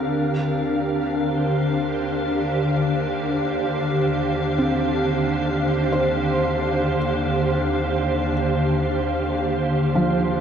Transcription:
0.00 10.40 D3 medium
0.00 1.35 C4 medium
0.00 10.40 D4 medium
0.00 10.40 G4 medium
0.00 3.10 A#4 medium
0.00 10.40 F5 medium
0.11 10.40 D#2 medium
1.00 10.40 C5 medium
4.58 6.98 C4 medium
5.92 8.32 C5 medium
9.95 10.40 F3 medium

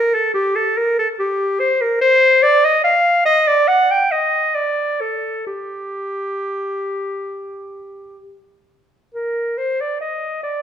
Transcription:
0.00 0.16 A#4 medium
0.14 0.33 A4 medium
0.34 0.57 G4 medium
0.56 0.79 A4 medium
0.77 0.97 A#4 medium
0.99 1.08 A4 medium
1.19 1.61 G4 medium
1.60 1.83 C5 medium
1.81 2.00 A#4 medium
2.01 2.44 C5 loud
2.43 2.67 D5 loud
2.65 2.83 D#5 medium
2.84 3.25 F5 medium
3.25 3.49 D#5 loud
3.47 3.69 D5 medium
3.68 3.92 F#5 loud
3.91 4.13 G5 medium
4.11 4.56 D#5 medium
4.55 5.02 D5 medium
5.01 5.46 A4 medium
5.47 8.20 G4 medium
9.14 9.59 A#4 medium
9.58 9.82 C5 medium
9.81 10.00 D5 medium
10.01 10.43 D#5 medium
10.43 10.62 D5 medium

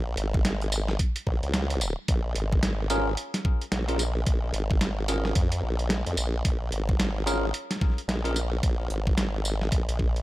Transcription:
0.00 0.16 A#1 loud
0.17 0.98 G#1 medium
0.17 closed hi-hat medium
0.34 kick loud
0.45 snare loud
0.45 closed hi-hat medium
0.62 closed hi-hat soft
0.72 closed hi-hat medium
0.72 tambourine medium
0.88 snare medium
0.99 kick loud
0.99 closed hi-hat medium
1.16 closed hi-hat medium
1.27 1.41 A#1 loud
1.27 kick medium
1.43 1.95 C#2 medium
1.43 closed hi-hat soft
1.54 snare loud
1.54 closed hi-hat medium
1.70 closed hi-hat medium
1.81 closed hi-hat medium
1.81 tambourine medium
2.08 2.34 A#1 loud
2.08 kick loud
2.08 closed hi-hat medium
2.35 3.16 G#1 loud
2.35 closed hi-hat medium
2.52 kick loud
2.63 snare loud
2.63 closed hi-hat medium
2.90 3.08 C#4 medium
2.90 3.08 F4 medium
2.90 3.08 G#4 medium
2.90 3.08 A#4 loud
2.90 closed hi-hat medium
2.90 tambourine medium
3.17 closed hi-hat medium
3.34 snare soft
3.34 closed hi-hat medium
3.45 kick loud
3.61 closed hi-hat soft
3.72 4.25 A#1 loud
3.72 snare loud
3.72 closed hi-hat medium
3.88 4.02 C#4 medium
3.88 4.02 F4 medium
3.88 4.02 G#4 medium
3.88 4.02 A#4 medium
3.88 closed hi-hat medium
3.99 closed hi-hat medium
3.99 tambourine medium
4.26 4.52 A#1 loud
4.26 kick loud
4.26 closed hi-hat medium
4.53 5.34 G#1 medium
4.53 closed hi-hat medium
4.71 kick loud
4.81 snare loud
4.81 closed hi-hat medium
5.08 5.34 C#4 medium
5.08 5.34 F4 medium
5.08 5.34 G#4 medium
5.08 5.34 A#4 medium
5.08 closed hi-hat medium
5.08 tambourine medium
5.25 snare medium
5.35 5.61 F2 medium
5.35 kick loud
5.35 closed hi-hat medium
5.52 closed hi-hat medium
5.63 6.04 A#1 loud
5.79 closed hi-hat soft
5.90 snare loud
5.90 closed hi-hat medium
6.07 6.16 F2 loud
6.07 closed hi-hat medium
6.17 6.43 A#1 medium
6.17 closed hi-hat medium
6.17 tambourine medium
6.45 6.70 A#1 loud
6.45 kick loud
6.45 closed hi-hat medium
6.72 7.52 G#1 medium
6.72 closed hi-hat medium
6.89 kick loud
7.00 snare loud
7.00 closed hi-hat medium
7.26 7.45 C#4 loud
7.26 7.45 F4 medium
7.26 7.45 G#4 medium
7.26 7.45 A#4 loud
7.26 closed hi-hat medium
7.26 tambourine medium
7.54 closed hi-hat medium
7.71 snare soft
7.71 closed hi-hat medium
7.76 snare soft
7.81 kick loud
7.81 snare soft
7.90 snare soft
7.98 closed hi-hat soft
8.08 8.61 A#1 loud
8.08 snare loud
8.08 closed hi-hat medium
8.25 8.38 C#4 medium
8.25 8.38 F4 medium
8.25 8.38 G#4 medium
8.25 8.38 A#4 medium
8.25 closed hi-hat medium
8.36 closed hi-hat medium
8.36 tambourine medium
8.63 8.89 A#1 loud
8.63 kick loud
8.63 closed hi-hat medium
8.90 9.71 G#1 loud
8.90 closed hi-hat medium
9.07 kick loud
9.18 snare loud
9.18 closed hi-hat medium
9.45 closed hi-hat medium
9.45 tambourine medium
9.61 snare soft
9.72 9.86 A#1 loud
9.72 kick loud
9.72 closed hi-hat medium
9.89 10.22 A#1 loud
9.89 closed hi-hat medium
9.99 kick medium
10.16 closed hi-hat soft

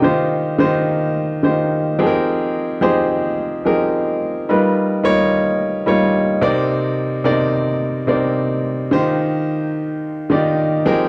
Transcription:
0.00 0.39 D#3 medium
0.00 0.39 D#4 medium
0.00 0.39 F4 medium
0.00 0.39 G4 medium
0.00 0.18 D#5 medium
0.04 0.40 C5 medium
0.59 1.12 D#3 medium
0.59 1.12 D#4 medium
0.59 1.12 F4 medium
0.59 1.12 G4 medium
0.59 1.12 C5 loud
1.43 1.95 D#3 medium
1.43 1.96 D#4 medium
1.43 1.96 F4 medium
1.43 1.96 G4 medium
1.43 1.96 C5 medium
1.98 2.66 F3 medium
1.98 2.67 C4 medium
1.98 2.67 D#4 medium
1.98 2.67 G4 medium
1.98 2.67 G#4 medium
1.98 2.07 A4 medium
2.06 2.70 A#4 loud
2.81 3.34 F3 medium
2.81 3.34 C4 medium
2.81 3.34 D#4 medium
2.81 3.34 G4 medium
2.81 3.34 G#4 medium
2.81 3.34 C5 medium
3.65 4.17 F3 medium
3.65 4.17 C4 medium
3.65 4.18 D#4 medium
3.65 4.18 G4 medium
3.65 4.18 G#4 medium
3.65 4.18 A#4 medium
4.49 4.84 G3 medium
4.49 4.84 D#4 medium
4.49 4.84 F4 medium
4.49 4.85 A#4 medium
4.49 4.85 B4 medium
5.03 5.56 G3 medium
5.03 5.56 D#4 medium
5.03 5.56 F4 medium
5.03 5.56 A#4 medium
5.03 5.57 C#5 loud
5.86 6.39 G3 medium
5.86 6.39 D#4 medium
5.86 6.39 F4 medium
5.86 6.39 A#4 medium
5.86 6.40 C#5 medium
6.41 7.10 C3 medium
6.41 7.10 C4 medium
6.41 7.10 D#4 medium
6.41 7.10 A#4 medium
6.41 7.10 D5 loud
7.24 7.77 C3 medium
7.24 7.77 C4 medium
7.24 7.77 D#4 medium
7.24 7.78 A#4 medium
7.24 7.78 D5 medium
8.07 8.60 C3 medium
8.07 8.61 C4 medium
8.07 8.61 D#4 medium
8.07 8.61 A#4 medium
8.07 8.61 D5 medium
8.91 9.62 D#3 medium
8.91 9.63 D#4 medium
8.91 9.63 F4 medium
8.91 9.63 G4 medium
8.91 9.63 C5 loud
10.30 10.82 D#3 medium
10.30 10.83 D#4 medium
10.30 10.83 F4 medium
10.30 10.83 G4 medium
10.30 10.83 D5 medium
10.85 11.09 F3 loud
10.85 11.09 C4 medium
10.85 11.09 D#4 medium
10.85 11.09 G4 medium
10.85 11.09 G#4 medium
10.85 11.09 A#4 loud

